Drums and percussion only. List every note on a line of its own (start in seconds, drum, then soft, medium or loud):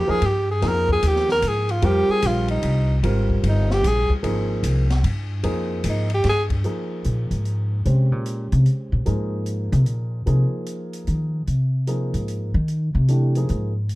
0.22 ride medium
0.62 snare soft
0.62 ride medium
0.89 kick medium
1.03 hi-hat pedal medium
1.03 ride medium
1.16 snare soft
1.29 snare soft
1.42 hi-hat pedal medium
1.42 ride medium
1.69 ride soft
1.82 ride medium
2.22 hi-hat pedal medium
2.22 ride medium
2.48 ride soft
2.63 ride medium
3.03 ride medium
3.30 kick soft
3.44 ride medium
3.71 snare medium
3.84 hi-hat pedal medium
3.84 ride medium
4.10 kick soft
4.24 ride medium
4.63 hi-hat pedal medium
4.63 ride medium
4.90 snare medium
4.90 ride soft
5.04 ride medium
5.44 ride medium
5.84 hi-hat pedal medium
5.84 ride medium
6.10 ride soft
6.24 snare soft
6.24 ride medium
6.50 kick medium
6.50 ride soft
6.64 closed hi-hat soft
7.04 closed hi-hat soft
7.31 closed hi-hat soft
7.45 closed hi-hat soft
7.85 closed hi-hat soft
8.26 closed hi-hat soft
8.52 closed hi-hat soft
8.66 closed hi-hat soft
9.06 closed hi-hat soft
9.46 closed hi-hat soft
9.73 closed hi-hat soft
9.86 closed hi-hat soft
10.27 closed hi-hat soft
10.66 closed hi-hat soft
10.93 closed hi-hat soft
11.07 closed hi-hat soft
11.47 closed hi-hat soft
11.87 closed hi-hat soft
12.14 closed hi-hat soft
12.28 closed hi-hat soft
12.68 closed hi-hat soft
13.08 closed hi-hat soft
13.35 closed hi-hat soft
13.49 closed hi-hat soft
13.89 closed hi-hat soft